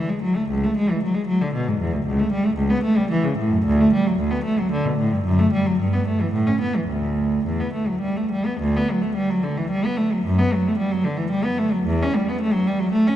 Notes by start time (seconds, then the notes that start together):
0.09 G#3
0.22 F#3
0.36 A3
0.50 C#2
0.64 A3
0.77 G#3
0.90 E3
1.03 F#3
1.14 G#3
1.27 F#3
1.41 D3
1.54 B2
1.68 G#2
1.81 E2
1.92 D2
2.07 C#2
2.19 A3
2.32 G3
2.45 A3
2.57 C#2
2.70 B3
2.83 A3
2.97 G3
3.11 E3
3.23 C#3
3.38 A2
3.50 F#2
3.66 D2
3.80 A3
3.93 G3
4.06 F#3
4.19 D2
4.31 B3
4.44 A3
4.59 F#3
4.72 D3
4.85 B2
4.99 A2
5.13 G2
5.25 F#2
5.39 A3
5.52 G3
5.66 F#3
5.79 G2
5.93 B3
6.07 A3
6.21 E3
6.32 A2
6.47 C#4
6.61 B3
6.76 E3
6.88 D2
7.46 E2
7.60 B3
7.73 A3
7.88 F#3
8.01 G3
8.16 A3
8.32 G3
8.45 B3
8.60 D2
8.76 B3
8.90 F#3
9.02 A3
9.15 G3
9.29 F#3
9.43 D3
9.57 E3
9.70 G3
9.85 B3
9.97 A3
10.12 F#3
10.25 F#2
10.39 B3
10.53 F#3
10.68 A3
10.78 G3
10.92 F#3
11.04 D3
11.17 E3
11.31 G3
11.44 B3
11.58 A3
11.72 F#3
11.86 E2
12.02 C#4
12.15 G3
12.29 B3
12.41 A3
12.53 F#3
12.67 G3
12.79 F#3
12.92 A3
13.07 C#4